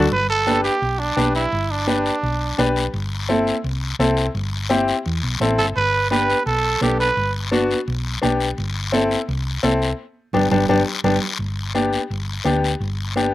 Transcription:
0.11 0.68 G1 medium
0.11 0.28 B4 medium
0.11 high conga soft
0.11 long guiro medium
0.30 0.62 A4 medium
0.47 0.71 D4 medium
0.47 0.71 G4 medium
0.47 0.71 B4 medium
0.47 high conga medium
0.47 short guiro medium
0.64 1.01 G4 medium
0.64 short guiro medium
0.82 1.10 B1 medium
0.82 high conga soft
0.82 long guiro medium
1.00 1.35 D4 medium
1.17 1.45 B1 medium
1.17 1.41 D4 medium
1.17 1.42 G4 medium
1.17 1.42 B4 medium
1.17 high conga medium
1.17 short guiro medium
1.35 1.72 E4 medium
1.35 short guiro medium
1.52 2.09 G1 medium
1.52 high conga soft
1.52 long guiro medium
1.71 2.76 D4 medium
1.87 2.12 D4 medium
1.87 2.12 G4 medium
1.87 2.12 B4 medium
1.87 high conga medium
1.87 short guiro medium
2.06 short guiro medium
2.23 2.51 B1 medium
2.23 high conga soft
2.23 long guiro medium
2.58 2.87 B1 medium
2.58 2.83 D4 medium
2.58 2.83 G4 medium
2.58 2.83 B4 medium
2.58 high conga medium
2.58 short guiro medium
2.76 short guiro medium
2.93 3.50 G1 medium
2.93 high conga soft
2.93 long guiro medium
3.29 3.54 C4 medium
3.29 3.54 E4 medium
3.29 3.54 A4 medium
3.29 high conga medium
3.29 short guiro medium
3.47 short guiro medium
3.64 3.92 C2 medium
3.64 high conga soft
3.64 long guiro medium
3.99 4.28 C2 medium
3.99 4.24 C4 medium
3.99 4.24 E4 medium
3.99 4.25 A4 medium
3.99 high conga medium
3.99 short guiro medium
4.17 short guiro medium
4.34 4.91 G1 medium
4.34 high conga soft
4.34 long guiro medium
4.70 4.95 C4 medium
4.70 4.95 E4 medium
4.70 4.95 G4 medium
4.70 high conga medium
4.70 short guiro medium
4.88 short guiro medium
5.05 5.20 E2 medium
5.05 high conga soft
5.05 long guiro medium
5.23 5.39 B1 medium
5.40 5.56 A1 medium
5.40 5.66 C4 medium
5.40 5.66 E4 medium
5.40 5.66 A4 medium
5.40 high conga medium
5.40 short guiro medium
5.58 5.74 G1 medium
5.58 5.66 A4 medium
5.58 short guiro medium
5.76 6.32 G1 medium
5.76 6.09 B4 medium
5.76 high conga soft
5.76 long guiro medium
6.11 6.36 B3 medium
6.11 6.36 D4 medium
6.11 6.36 G4 medium
6.11 6.44 B4 medium
6.11 high conga medium
6.11 short guiro medium
6.30 short guiro medium
6.46 6.75 B1 medium
6.46 6.79 A4 medium
6.46 high conga soft
6.46 long guiro medium
6.81 7.10 B1 medium
6.81 7.06 B3 medium
6.81 7.06 D4 medium
6.81 6.99 G4 medium
6.81 7.07 A4 medium
6.81 high conga medium
6.81 short guiro medium
7.00 7.33 B4 medium
7.00 short guiro medium
7.17 7.73 G1 medium
7.17 high conga soft
7.17 long guiro medium
7.52 7.77 B3 medium
7.52 7.77 D4 medium
7.52 7.77 F#4 medium
7.52 high conga medium
7.52 short guiro medium
7.71 short guiro medium
7.88 8.16 B1 medium
7.88 high conga soft
7.88 long guiro medium
8.22 8.51 B1 medium
8.22 8.47 B3 medium
8.22 8.47 D4 medium
8.22 8.47 G4 medium
8.22 high conga medium
8.22 short guiro medium
8.40 short guiro medium
8.58 9.14 G1 medium
8.58 high conga soft
8.58 long guiro medium
8.92 9.17 C4 medium
8.92 9.18 E4 medium
8.92 9.18 A4 medium
8.92 high conga medium
8.92 short guiro medium
9.11 short guiro medium
9.28 9.57 C2 medium
9.28 high conga soft
9.28 long guiro medium
9.63 9.92 C2 medium
9.63 9.88 C4 medium
9.63 9.88 E4 medium
9.63 9.88 A4 medium
9.63 high conga medium
9.63 short guiro medium
9.82 short guiro medium
10.33 10.47 G1 medium
10.33 10.45 B3 medium
10.33 10.45 D4 medium
10.33 10.45 G4 medium
10.33 low conga medium
10.33 long guiro medium
10.51 10.64 G1 medium
10.51 10.63 B3 medium
10.51 10.63 D4 medium
10.51 10.63 G4 medium
10.51 low conga medium
10.51 long guiro medium
10.69 10.82 G1 medium
10.69 10.80 B3 medium
10.69 10.81 D4 medium
10.69 10.81 G4 medium
10.69 low conga medium
10.69 long guiro medium
11.04 11.17 G1 medium
11.04 11.16 B3 medium
11.04 11.16 D4 medium
11.04 11.16 G4 medium
11.04 low conga medium
11.04 long guiro medium
11.39 11.96 G1 medium
11.39 high conga soft
11.39 long guiro medium
11.75 11.99 B3 medium
11.75 12.00 D4 medium
11.75 12.00 G4 medium
11.75 high conga medium
11.75 short guiro medium
11.93 short guiro medium
12.10 12.38 G1 medium
12.10 high conga soft
12.10 long guiro medium
12.44 12.73 D2 medium
12.44 12.70 B3 medium
12.44 12.70 D4 medium
12.44 12.70 G4 medium
12.44 high conga medium
12.44 short guiro medium
12.64 short guiro medium
12.80 13.34 G1 medium
12.80 high conga soft
12.80 long guiro medium
13.16 13.34 B3 medium
13.16 13.34 D4 medium
13.16 13.34 G4 medium
13.16 high conga medium
13.16 short guiro medium

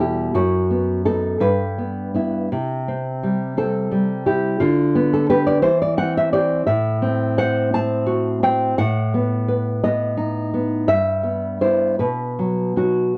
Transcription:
0.00 0.32 E2 medium
0.00 0.36 B2 medium
0.00 0.36 G3 soft
0.00 0.36 E4 soft
0.00 0.34 G4 medium
0.34 1.38 F#2 medium
0.34 1.03 F#4 medium
0.70 1.04 B3 medium
1.05 1.38 B3 soft
1.05 1.38 D#4 soft
1.05 1.40 A4 medium
1.40 2.47 G2 medium
1.40 2.47 B4 medium
1.78 2.13 B3 soft
2.14 2.47 B3 soft
2.14 2.48 E4 soft
2.52 4.57 C3 medium
2.88 3.56 C4 soft
3.23 3.90 G3 medium
3.57 4.59 C4 soft
3.57 4.24 A4 medium
3.91 4.60 G3 medium
4.26 4.61 E4 soft
4.26 4.60 G4 medium
4.60 5.61 D3 medium
4.60 5.10 F4 medium
4.95 5.29 B3 medium
5.13 5.29 A4 medium
5.30 5.61 B3 soft
5.30 5.60 G4 medium
5.30 5.46 B4 medium
5.47 5.62 D5 medium
5.62 6.62 E3 medium
5.62 5.80 C5 medium
5.82 5.97 D5 medium
5.97 6.32 C4 medium
5.97 6.15 F#5 medium
6.17 6.32 E5 medium
6.33 6.63 C4 soft
6.33 6.64 G4 medium
6.33 6.65 D5 medium
6.67 8.73 A2 medium
6.67 7.34 E5 medium
7.02 7.73 C4 medium
7.38 8.42 C5 medium
7.38 7.71 F#5 loud
7.74 8.42 C4 medium
7.74 8.39 A5 medium
8.06 8.76 F#4 medium
8.43 8.77 C4 medium
8.43 8.76 G5 medium
8.78 10.85 A2 medium
8.78 9.79 F#5 loud
9.14 9.83 B3 medium
9.48 10.53 B4 medium
9.84 10.52 B3 soft
9.84 10.50 D#5 medium
10.17 10.88 D#4 medium
10.54 10.89 B3 soft
10.88 11.96 G2 medium
10.88 11.58 E5 loud
11.23 11.60 B3 medium
11.61 11.95 B3 soft
11.61 11.96 E4 medium
11.61 11.98 C5 medium
11.99 13.14 B2 medium
11.99 12.74 B4 medium
12.39 12.75 F#3 soft
12.76 13.13 F#3 soft
12.76 13.13 D#4 soft
12.76 13.15 F#4 medium

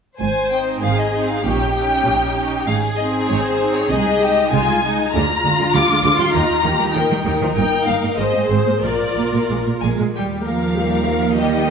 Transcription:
0.20 0.73 G#1 soft
0.20 0.73 G#2 soft
0.20 0.79 C5 soft
0.20 0.50 G#5 medium
0.51 1.12 C4 soft
0.51 1.12 D#4 soft
0.51 0.59 G5 soft
0.82 1.35 G#1 soft
0.82 1.34 G#2 soft
0.82 1.44 G#4 soft
0.82 0.98 F5 soft
0.98 1.29 D#5 soft
1.13 1.44 C4 soft
1.13 1.44 D#4 soft
1.28 1.44 F5 soft
1.44 1.97 A#1 soft
1.44 1.96 A#2 soft
1.44 1.75 C#4 soft
1.44 1.75 D#4 soft
1.44 2.66 G4 soft
1.44 2.68 G5 medium
1.76 2.36 C#4 soft
1.76 2.37 D#4 soft
2.06 2.58 A#1 soft
2.06 2.58 A#2 soft
2.38 2.68 C#4 soft
2.38 2.68 D#4 soft
2.66 3.20 G#1 soft
2.66 3.20 G#2 medium
2.66 3.89 G#4 medium
2.66 2.74 F5 medium
2.97 3.60 C4 soft
2.97 3.60 D#4 soft
2.97 3.05 D#5 soft
3.29 3.81 G#1 soft
3.29 3.81 G#2 soft
3.29 3.44 C#5 medium
3.44 3.75 C5 medium
3.61 3.91 C4 soft
3.61 3.90 D#4 soft
3.76 3.91 C#5 medium
3.90 4.44 C2 medium
3.90 4.44 C3 soft
3.90 4.21 G#3 soft
3.90 4.21 D#4 soft
3.90 4.22 G#4 soft
3.90 4.53 D#5 medium
4.21 4.83 G#3 soft
4.21 4.83 D#4 soft
4.21 4.53 G4 soft
4.53 5.05 C2 soft
4.53 5.05 C3 soft
4.53 4.84 F4 soft
4.53 5.13 G#5 medium
4.85 5.13 G#3 soft
4.85 5.14 D#4 soft
4.85 5.15 D#4 soft
5.14 5.21 D2 medium
5.14 5.21 D3 soft
5.14 5.20 G#3 medium
5.14 5.24 D4 soft
5.14 6.92 F4 medium
5.14 5.73 A#5 medium
5.44 5.51 D2 soft
5.44 5.50 D3 soft
5.44 5.51 G#3 soft
5.44 6.34 F4 soft
5.59 5.65 D3 medium
5.59 5.67 G#3 soft
5.74 5.81 D2 soft
5.74 5.80 D3 soft
5.74 5.81 G3 soft
5.74 6.19 D6 medium
5.89 5.95 D3 soft
5.89 5.97 G#3 soft
6.04 6.10 D2 medium
6.04 6.10 D3 medium
6.04 6.10 G#3 medium
6.18 6.25 D3 soft
6.18 6.26 G3 soft
6.18 6.34 C6 medium
6.34 6.40 D#2 medium
6.34 6.40 D#3 medium
6.34 6.41 G3 soft
6.34 6.65 D#4 soft
6.34 6.94 A#5 medium
6.64 6.71 D#2 soft
6.64 6.70 D#3 soft
6.64 6.71 G3 soft
6.64 6.96 G4 soft
6.79 6.86 D#3 soft
6.79 6.87 G3 soft
6.95 7.02 D#2 soft
6.95 7.01 D#3 soft
6.95 7.02 F3 soft
6.95 8.19 D#4 soft
6.95 7.24 A#4 soft
6.95 7.26 G5 medium
7.10 7.16 D#3 soft
7.10 7.17 G3 soft
7.25 7.32 D#2 soft
7.25 7.31 D#3 soft
7.25 7.32 G3 soft
7.25 8.17 A#4 soft
7.41 7.47 D#3 soft
7.41 7.48 F3 soft
7.55 7.62 G1 soft
7.55 7.62 G2 soft
7.55 7.63 A#3 medium
7.55 7.85 G5 medium
7.86 7.93 G1 soft
7.86 7.94 G2 soft
7.86 7.94 A#3 soft
7.86 8.19 F5 soft
8.03 8.09 G2 soft
8.03 8.09 A#3 soft
8.18 8.24 G#1 soft
8.18 8.25 G#2 soft
8.18 8.25 A#3 soft
8.18 8.84 G#4 soft
8.18 8.84 C5 soft
8.18 8.50 D#5 soft
8.34 8.41 G#2 soft
8.34 8.41 C4 soft
8.49 8.57 G#1 soft
8.49 8.57 G#2 soft
8.49 8.57 C4 soft
8.49 8.83 C5 soft
8.67 8.74 G#2 soft
8.67 8.74 A#3 soft
8.82 8.90 A#1 soft
8.82 8.90 A#2 soft
8.82 8.90 A#3 soft
8.82 9.95 F4 soft
8.82 9.81 A#4 soft
8.82 9.50 D5 soft
9.17 9.23 A#1 soft
9.17 9.24 A#2 soft
9.17 9.24 A#3 soft
9.33 9.40 A#2 soft
9.33 9.41 A#3 soft
9.50 9.57 A#1 soft
9.50 9.57 A#2 soft
9.50 9.57 G#3 soft
9.67 9.74 A#2 soft
9.67 9.73 A#3 soft
9.81 9.90 A#1 soft
9.81 9.90 A#2 soft
9.81 10.13 G#3 soft
9.81 9.90 A#3 soft
9.81 9.89 G#5 soft
9.99 10.06 A#2 soft
9.99 10.05 G#3 soft
10.15 11.70 D#2 soft
10.15 10.44 G3 soft
10.15 10.46 G3 soft
10.15 10.44 G4 soft
10.15 10.24 G5 soft
10.44 11.37 F3 soft
10.44 10.78 A#3 soft
10.44 10.77 A#4 soft
10.44 11.36 F5 soft
10.77 11.08 G3 soft
10.77 11.08 G4 soft
10.77 11.35 A#4 soft
11.07 11.38 A#3 soft
11.07 11.38 A#4 soft
11.37 11.70 D#3 soft
11.37 11.66 G3 soft
11.37 11.68 G4 soft
11.37 11.66 G4 soft
11.37 11.70 D#5 medium

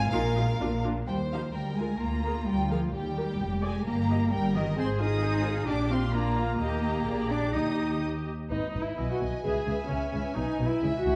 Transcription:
0.00 0.11 F5 medium
0.00 0.11 G#5 loud
0.10 0.54 A#1 medium
0.10 0.54 A#2 medium
0.10 0.20 D#4 medium
0.10 0.21 F4 medium
0.10 0.82 A#4 medium
0.10 0.82 F5 medium
0.35 0.43 D#4 soft
0.35 0.44 F4 soft
0.59 1.03 A#1 medium
0.59 1.02 A#2 medium
0.59 0.68 D4 soft
0.59 0.69 F4 soft
0.84 0.93 D4 soft
0.84 0.92 F4 soft
1.07 1.47 D#2 soft
1.07 1.16 G3 medium
1.07 1.52 C5 medium
1.07 1.15 G5 medium
1.31 1.54 F3 medium
1.31 1.40 D#4 soft
1.31 1.40 G4 soft
1.31 1.40 F5 medium
1.54 1.94 D2 soft
1.54 1.78 G3 medium
1.54 2.01 A#4 soft
1.54 1.77 G5 soft
1.77 2.01 G#3 medium
1.77 1.86 F4 soft
1.77 1.87 A#4 soft
1.77 2.01 G#5 medium
2.01 2.40 D2 medium
2.01 2.48 A#3 medium
2.01 2.95 F4 medium
2.01 2.47 A#5 medium
2.25 2.33 G#4 soft
2.25 2.33 A#4 soft
2.47 2.87 D2 medium
2.47 2.71 G3 medium
2.47 2.71 G5 medium
2.71 2.95 F3 medium
2.71 2.79 G#4 soft
2.71 2.79 A#4 soft
2.71 2.80 F5 soft
2.94 3.34 D#2 medium
2.94 3.63 G3 medium
2.94 3.85 G4 medium
2.94 3.64 G5 medium
3.17 3.25 G4 soft
3.17 3.25 A#4 soft
3.42 3.80 F1 medium
3.63 3.87 G#3 medium
3.63 3.71 G#4 soft
3.63 3.71 D5 medium
3.63 3.87 G#5 medium
3.86 4.25 G1 medium
3.86 4.32 A#3 medium
3.86 4.31 G4 medium
3.86 4.31 A#5 medium
4.09 4.17 G4 soft
4.09 4.17 D#5 soft
4.32 4.70 G1 medium
4.32 4.55 G3 medium
4.32 4.76 A#4 medium
4.32 4.54 G5 medium
4.55 4.78 D#3 medium
4.55 4.62 G4 soft
4.55 4.62 D#5 soft
4.55 4.77 D#5 medium
4.77 5.64 G#1 medium
4.77 4.85 C4 medium
4.77 4.98 G#4 medium
4.77 5.68 G#4 medium
4.77 4.98 C5 medium
4.77 4.87 C6 medium
5.00 5.66 D#4 medium
5.00 5.23 F4 soft
5.00 5.22 G#4 soft
5.00 5.67 D#6 medium
5.22 5.45 G#4 medium
5.22 5.45 C5 medium
5.46 5.68 F4 soft
5.46 5.68 G#4 soft
5.67 6.59 A#1 medium
5.67 5.90 D4 medium
5.67 5.89 D4 medium
5.67 6.12 G4 medium
5.67 5.89 D5 medium
5.67 5.90 D6 medium
5.91 5.99 C4 medium
5.91 6.13 F4 soft
5.91 6.13 F5 soft
5.91 6.13 C6 medium
6.13 6.58 A#3 medium
6.13 6.37 D4 soft
6.13 6.59 F4 medium
6.13 6.37 D5 soft
6.13 6.58 A#5 medium
6.36 6.60 F4 soft
6.36 6.60 F5 soft
6.59 7.03 D#2 medium
6.59 7.29 A#3 medium
6.59 7.03 G4 medium
6.59 7.54 G4 medium
6.59 7.03 D#5 medium
6.59 7.28 A#5 medium
7.07 7.54 A#1 medium
7.07 7.55 G#4 medium
7.07 7.55 D5 soft
7.30 7.54 D4 medium
7.30 7.55 D6 medium
7.54 8.30 D#2 medium
7.54 8.03 D#4 medium
7.54 8.28 G4 soft
7.54 8.27 G4 soft
7.54 8.30 D#5 soft
7.54 8.02 D#6 medium
8.49 8.59 G#1 soft
8.49 8.58 G#2 soft
8.49 8.80 D#4 medium
8.49 8.72 B4 soft
8.49 8.71 D#5 soft
8.73 8.83 G#1 soft
8.73 8.81 G#2 soft
8.73 8.96 B4 soft
8.73 8.96 D#5 soft
8.81 9.13 E4 medium
8.97 9.07 B1 soft
8.97 9.06 B2 soft
8.97 9.20 B4 soft
8.97 9.21 D#5 soft
8.97 10.79 G#5 medium
9.12 9.20 F#4 medium
9.20 9.30 B1 soft
9.20 9.28 B2 soft
9.20 9.44 B4 soft
9.20 9.44 D#5 soft
9.44 9.53 C#2 soft
9.44 9.52 C#3 soft
9.44 9.89 G#4 medium
9.44 9.67 B4 soft
9.44 9.67 E5 soft
9.67 9.76 C#2 soft
9.67 9.75 C#3 soft
9.67 9.89 B4 soft
9.67 9.89 E5 soft
9.89 9.98 C#2 soft
9.89 9.98 C#3 soft
9.89 10.35 C#4 medium
9.89 10.13 B4 soft
9.89 10.13 E5 soft
10.13 10.21 C#2 soft
10.13 10.21 C#3 soft
10.13 10.36 B4 soft
10.13 10.37 E5 soft
10.35 10.45 B1 soft
10.35 10.44 B2 soft
10.35 10.67 D#4 medium
10.35 10.60 B4 soft
10.35 10.60 G#5 soft
10.60 10.68 B1 soft
10.60 10.68 B2 soft
10.60 10.83 B4 soft
10.60 10.83 G#5 soft
10.67 10.98 E4 medium
10.82 10.91 C#2 medium
10.82 10.90 C#3 medium
10.82 11.16 E5 soft
10.82 11.04 E5 soft
10.82 11.04 G#5 soft
10.98 11.16 F#4 medium
11.05 11.14 C#2 soft
11.05 11.13 C#3 soft
11.05 11.16 E5 soft
11.05 11.16 G#5 soft

